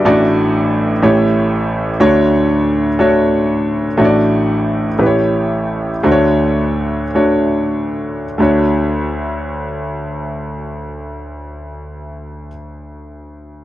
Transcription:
X:1
M:6/8
L:1/8
Q:3/8=56
K:D
V:1 name="Grand piano"
[A,DFd]3 [A,EGc]3 | [A,DFc]3 [A,DFc]3 | [A,DFcd]3 [A,EGBc]3 | [A,DF=c^c]3 [A,DFc]3 |
[A,DFc]6- | [A,DFc]6 |]
V:2 name="Grand piano" clef=bass
[A,,,A,,]3 [A,,,A,,]3 | [D,,D,]6 | [A,,,A,,]3 [A,,,A,,]3 | [D,,D,]6 |
D,,6- | D,,6 |]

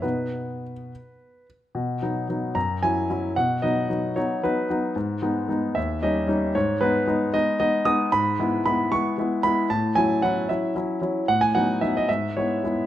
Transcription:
X:1
M:6/8
L:1/16
Q:3/8=75
K:B
V:1 name="Grand piano"
B8- B2 z2 | z6 a2 g4 | f2 d4 c2 B4 | z6 e2 d4 |
c2 B4 d2 d2 d'2 | [K:E] b4 b2 c'4 b2 | a2 g2 f2 e2 z4 | f g f2 e d e2 c4 |]
V:2 name="Grand piano"
[B,,B,D]6 z6 | B,,2 [F,B,D]2 [F,B,D]2 F,,2 [F,CE]2 [F,CE]2 | B,,2 [F,B,D]2 [F,B,D]2 [F,B,D]2 [F,B,D]2 [F,B,D]2 | G,,2 [G,B,D]2 [G,B,D]2 D,,2 [=G,CD]2 [G,CD]2 |
G,,2 [G,B,D]2 [G,B,D]2 [G,B,D]2 [G,B,D]2 [G,B,D]2 | [K:E] G,,2 [G,B,E]2 [G,B,E]2 [G,B,E]2 [G,B,E]2 [G,B,E]2 | A,,2 [F,CE]2 [F,CE]2 [F,CE]2 [F,CE]2 [F,CE]2 | A,,2 [F,B,D]2 [F,B,D]2 G,,2 [G,B,E]2 [G,B,E]2 |]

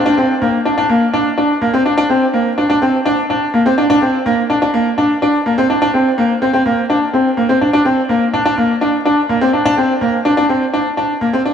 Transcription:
X:1
M:4/4
L:1/16
Q:1/4=125
K:Bb
V:1 name="Grand piano"
D C2 B,2 D D B,2 D2 D2 B, C D | D C2 B,2 D D C2 D2 D2 B, C D | D C2 B,2 D D B,2 D2 D2 B, C D | D C2 B,2 C C B,2 D2 C2 B, C D |
D C2 B,2 D D B,2 D2 D2 B, C D | D C2 B,2 D D C2 D2 D2 B, C D |]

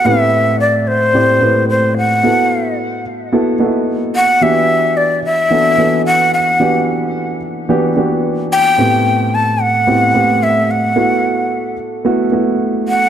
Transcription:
X:1
M:4/4
L:1/8
Q:"Swing 16ths" 1/4=110
K:Em
V:1 name="Shakuhachi"
e2 d c3 c f- | f2 z4 z f | e2 d e3 f f- | f2 z4 z g- |
g2 a f3 e f- | f3 z4 f |]
V:2 name="Grand piano"
[A,,B,CEGB]3 z [A,,CEGd] [A,,CEGB]2 z | [B,EFA]3 z [B,EFA] [B,^DEFA]2 z | [E,B,DFG]3 z [E,B,DFA] [E,B,DFA]2 z | [E,B,DFG]3 z [E,B,DFG] [E,B,DFG]2 z |
[A,,B,CEG]3 z [A,,B,CEG] [A,,B,CEG]2 z | [A,B,EF]3 z [A,B,EF] [A,B,EF]2 z |]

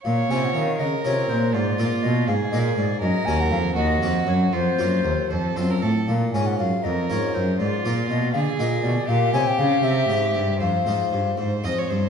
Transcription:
X:1
M:6/8
L:1/16
Q:3/8=80
K:Bbm
V:1 name="Flute"
f2 a g f2 e2 d2 c2 | =d4 e2 f2 e2 d2 | e2 a g f2 e4 d2 | c6 z6 |
f2 a g f2 e2 d2 c2 | =d4 e2 f2 e2 d2 | [K:Fm] f2 a g f2 =e6 | f6 z6 |]
V:2 name="Violin"
d6 B6 | F6 A6 | B6 G6 | F6 =A2 c B A2 |
z6 B6 | F6 A6 | [K:Fm] G12 | c6 c2 e d c2 |]
V:3 name="Harpsichord"
z2 [DFB]6 [DFB]4 | z2 [B,FB]6 [B,FB]4 | z2 [B,GB]4 z2 [B,GB]4 | z2 [B,FB]4 z2 [CF=A]4 |
z2 [DFB]6 [DFB]4 | z2 [B,FB]6 [B,FB]4 | [K:Fm] z2 [Gd]4 z2 [Gc]4 | z2 [A,Fc]6 [A,Fc]4 |]
V:4 name="Harpsichord" clef=bass
B,,2 C,2 E,2 D,2 C,2 B,,2 | A,,2 B,,2 _C,2 A,,2 B,,2 A,,2 | G,,2 E,,2 F,,2 E,,2 F,,2 G,,2 | F,,2 G,,2 E,,2 F,,2 G,,2 =A,,2 |
B,,2 A,,2 G,,2 F,,2 A,,2 G,,2 | A,,2 B,,2 _C,2 =D,2 B,,2 C,2 | [K:Fm] B,,2 C,2 D,2 C,2 A,,2 G,,2 | F,,2 A,,2 G,,2 A,,2 F,,2 G,,2 |]
V:5 name="Cello" clef=bass
B,,2 C,2 E,2 D,2 C,2 B,,2 | A,,2 B,,2 _C,2 A,,2 B,,2 A,,2 | G,,2 E,,2 F,,2 E,,2 F,,2 G,,2 | F,,2 G,,2 E,,2 F,,2 G,,2 =A,,2 |
B,,2 A,,2 G,,2 F,,2 A,,2 G,,2 | A,,2 B,,2 _C,2 =D,2 B,,2 C,2 | [K:Fm] B,,2 C,2 D,2 C,2 A,,2 G,,2 | F,,2 A,,2 G,,2 A,,2 F,,2 G,,2 |]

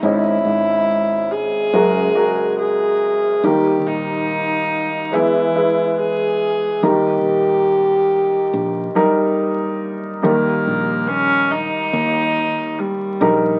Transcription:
X:1
M:4/4
L:1/16
Q:1/4=70
K:D#phr
V:1 name="Viola"
E6 G6 G4 | =G2 D6 E4 ^G4 | =G12 z4 | A,4 C2 D6 =G,4 |]
V:2 name="Upright piano"
[CEd]6- [CEd] z [G,FA]2 [G,FA]6 | [=G,DA]6- [G,DA] z [^G,EB]2 [G,EB]6 | [=G,DA]6- [G,DA] z3 [G,DA]6 | [=G,DA]6- [G,DA] z6 z [G,DA]2 |]
V:3 name="Upright piano" clef=bass
[G,,,G,,]8 [F,,,F,,]8 | [D,,D,]8 [E,,E,]8 | [D,,D,]16 | [D,,D,]16 |]
V:4 name="Fretless electric bass" clef=bass
G,,2 G,,6 F,,2 z6 | D,,2 A,,,6 E,,2 z6 | D,,2 A,,,6 A,,,2 z6 | D,,2 A,,,6 D,,6 A,,,2 |]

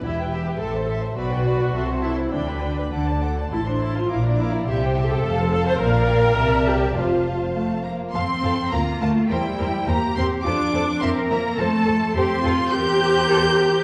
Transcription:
X:1
M:2/4
L:1/16
Q:1/4=104
K:G
V:1 name="Violin section"
b g b g c' a c' a | b g b g c' a c' a | b g b g d' a d' a | [K:F] c' a c' a d' b d' b |
c' g c' g a f a f | f2 g2 a4 | a4 a2 b2 | c'4 b2 a2 |
g4 b2 c'2 | d'4 c'2 b2 | a4 c'4 | g'8 |]
V:2 name="Violin section"
[Ge] [Bg] [Ge] [Bg] [Ae] c [Ae] c | [Bd] [Bd] [Bd] [Bd] [Ae] c [Ae] c | [dg] [Bb] [dg] [Bb] [Af] [da] [Af] [da] | [K:F] [Aa] [cc'] [Aa] [cc'] [Bf] d [Bf] d |
[Ge] [cg] [Ge] [cg] [Af] [ca] [Af] [ca] | [df]4 [de]4 | [cf]6- [cf] z | [Af]2 [Af]2 [Bf]2 [Bf]2 |
[Bc]2 [Bc]2 [Bc]2 [Bc]2 | [Ac]2 [Ac]2 [Be]2 [Be]2 | [Ac]2 [Ac]2 [Ac]2 [Ac]2 | [Bc]8 |]
V:3 name="Viola section"
E2 G2 A2 z2 | F6 E2 | D4 z4 | [K:F] E D E F E D E2 |
G3 A3 A c | B6 G2 | F4 A,2 B,2 | C4 B,2 A,2 |
G,4 B,2 C2 | D4 C2 B,2 | A,4 C4 | G8 |]
V:4 name="Cello section" clef=bass
E,,4 A,,4 | B,,4 C,4 | D,4 D,4 | [K:F] A,,4 B,,4 |
C,4 F,,4 | B,,4 C,4 | F,,6 z2 | z4 F4 |
E4 G4 | F2 A2 B4 | A4 G2 F2 | G4 A2 G2 |]
V:5 name="Double bass section" clef=bass
E,,,4 A,,,4 | B,,,4 C,,4 | D,,4 D,,4 | [K:F] A,,,4 B,,,4 |
C,,4 F,,,4 | B,,,4 C,,4 | F,,,6 z2 | F,,2 F,,2 D,,2 D,,2 |
E,,2 E,,2 E,,2 E,,2 | F,,2 F,,2 F,,2 F,,2 | F,,2 F,,2 F,,2 F,,2 | E,,8 |]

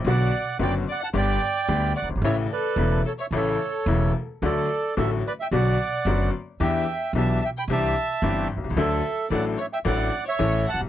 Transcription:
X:1
M:4/4
L:1/16
Q:1/4=110
K:D
V:1 name="Bandoneon"
[df]4 [dg]2 [df] [fa] [dg]6 [df]2 | [ce]2 [Bd]4 [Ac] [ce] [Ac]6 z2 | [Ad]4 [Ae]2 [Bd] [eg] [df]6 z2 | [eg]4 [ea]2 [eg] [gb] [ea]6 z2 |
[Ae]4 [df]2 [ce] [eg] [df]3 [ce]3 [fa]2 |]
V:2 name="Violin section"
d4 d2 d f d6 d2 | c2 A4 A c A6 z2 | A4 A2 B e d6 z2 | e4 e2 e g e6 z2 |
A4 d2 c e d3 c3 f2 |]
V:3 name="Upright piano" clef=bass
[B,,,B,,D,F,B,F]2 z2 [F,,,F,,D,F,B,F]2 z2 [G,,,G,,D,G,B,G]2 z2 [D,,D,G,B,G]2 z/2 F,,,/2 G,,,/2 ^G,,,/2 | [A,,,A,,C,E,A,E]2 z2 [E,,,E,,C,E,A,E]2 z2 [A,,,A,,C,E,A,E]2 z2 [E,,,E,,C,E,A,E]2 z2 | [D,,D,F,A,F]2 z2 [A,,,A,,D,F,A,F]2 z2 [B,,,B,,D,F,B,F]2 z2 [F,,,F,,D,F,B,F]2 z2 | [E,,E,B,DG]2 z2 [B,,,B,,E,B,DG]2 z2 [=C,,=C,E,=CDG]2 z2 [G,,,G,,E,CDG]2 z/2 B,,,/2 C,,/2 ^C,,/2 |
[D,,D,F,A,DA]2 z2 [A,,,A,,F,A,DA]2 z2 [A,,,A,,F,A,DA]2 z2 [A,,,A,,E,A,CA]2 z/2 B,,,/2 =C,,/2 z/2 |]
V:4 name="Upright bass" clef=bass
B,,,3/2 z2 z/2 F,,,3/2 z2 z/2 G,,,3/2 z2 z/2 D,,3/2 z F,,,/2 G,,,/2 ^G,,,/2 | A,,,3/2 z2 z/2 E,,,3/2 z2 z/2 A,,,3/2 z2 z/2 E,,,3/2 z2 z/2 | D,,3/2 z2 z/2 A,,,3/2 z2 z/2 B,,,3/2 z2 z/2 F,,,3/2 z2 z/2 | E,,3/2 z2 z/2 B,,,3/2 z2 z/2 =C,,3/2 z2 z/2 G,,,3/2 z B,,,/2 C,,/2 ^C,,/2 |
D,,3/2 z2 z/2 A,,,3/2 z2 z/2 A,,,3/2 z2 z/2 A,,,3/2 z B,,,/2 =C,,/2 z/2 |]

